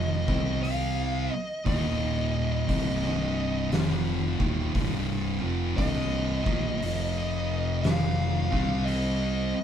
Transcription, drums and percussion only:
0.28 kick
0.64 open hi-hat
1.66 kick, open hi-hat
2.69 kick, open hi-hat
3.03 snare
3.72 snare, open hi-hat
4.40 kick
4.75 kick, open hi-hat
5.78 kick, open hi-hat
6.46 kick
6.82 open hi-hat
7.84 snare, open hi-hat
8.53 kick
8.87 open hi-hat

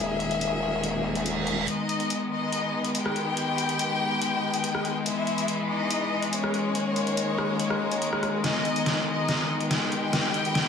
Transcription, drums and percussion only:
0.20 closed hi-hat
0.31 closed hi-hat
0.41 closed hi-hat
0.83 closed hi-hat
1.15 closed hi-hat
1.26 closed hi-hat
1.47 closed hi-hat
1.68 closed hi-hat
1.89 closed hi-hat
2.00 closed hi-hat
2.10 closed hi-hat
2.52 closed hi-hat
2.85 closed hi-hat
2.95 closed hi-hat
3.06 cross-stick
3.16 closed hi-hat
3.37 closed hi-hat
3.58 closed hi-hat
3.69 closed hi-hat
3.79 closed hi-hat
4.22 closed hi-hat
4.54 closed hi-hat
4.64 closed hi-hat
4.75 cross-stick
4.85 closed hi-hat
5.06 closed hi-hat
5.27 closed hi-hat
5.38 closed hi-hat
5.48 closed hi-hat
5.90 closed hi-hat
6.22 closed hi-hat
6.33 closed hi-hat
6.44 cross-stick
6.54 closed hi-hat
6.75 closed hi-hat
6.96 closed hi-hat
7.07 closed hi-hat
7.17 closed hi-hat
7.38 cross-stick
7.60 closed hi-hat
7.70 cross-stick
7.92 closed hi-hat
8.02 closed hi-hat
8.13 cross-stick
8.23 cross-stick, closed hi-hat
8.44 snare, closed hi-hat
8.65 closed hi-hat
8.76 closed hi-hat
8.86 snare, closed hi-hat
9.29 snare, closed hi-hat
9.61 closed hi-hat
9.71 snare, closed hi-hat
9.92 closed hi-hat
10.13 snare, closed hi-hat
10.34 closed hi-hat
10.45 closed hi-hat
10.55 snare, closed hi-hat

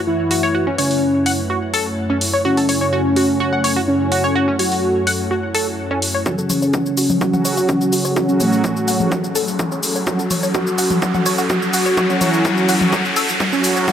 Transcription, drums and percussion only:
0.31 open hi-hat
0.78 open hi-hat
0.91 open hi-hat
1.26 open hi-hat
1.74 open hi-hat
2.21 open hi-hat
2.57 open hi-hat
2.69 open hi-hat
3.16 open hi-hat
3.64 open hi-hat
4.12 open hi-hat
4.59 open hi-hat
4.72 open hi-hat
5.07 open hi-hat
5.55 open hi-hat
6.02 open hi-hat
6.26 kick, mid tom, shaker
6.38 shaker
6.50 open hi-hat, mid tom, shaker
6.62 shaker
6.74 kick, mid tom, shaker
6.86 shaker
6.97 open hi-hat, shaker
7.10 mid tom, shaker
7.21 kick, mid tom, shaker
7.34 mid tom, shaker
7.45 open hi-hat, shaker
7.57 shaker
7.69 kick, mid tom, shaker
7.81 shaker
7.93 open hi-hat, shaker
8.05 shaker
8.16 kick, mid tom, shaker
8.29 shaker
8.40 open hi-hat, mid tom, shaker
8.53 shaker
8.64 kick, mid tom, shaker
8.76 shaker
8.88 open hi-hat, shaker
9.00 mid tom, shaker
9.12 kick, mid tom, shaker
9.24 shaker
9.35 open hi-hat, shaker
9.48 shaker
9.59 kick, mid tom, shaker
9.72 shaker
9.83 open hi-hat, shaker
9.95 shaker
10.07 kick, mid tom, shaker
10.19 shaker
10.31 open hi-hat, mid tom, shaker
10.43 shaker
10.55 kick, mid tom, shaker
10.67 shaker
10.78 open hi-hat, shaker
10.91 mid tom, shaker
11.02 kick, mid tom, shaker
11.14 mid tom, shaker
11.26 open hi-hat, shaker
11.38 shaker
11.50 kick, mid tom, shaker
11.62 shaker
11.73 open hi-hat, shaker
11.86 shaker
11.97 kick, mid tom, shaker
12.10 shaker
12.21 open hi-hat, mid tom, shaker
12.34 shaker
12.45 kick, mid tom, shaker
12.57 shaker
12.69 open hi-hat, shaker
12.81 mid tom, shaker
12.93 kick, mid tom, shaker
13.05 shaker
13.16 open hi-hat, shaker
13.29 shaker
13.40 kick, mid tom, shaker
13.53 shaker
13.64 open hi-hat, shaker
13.76 shaker
13.88 kick, mid tom, shaker

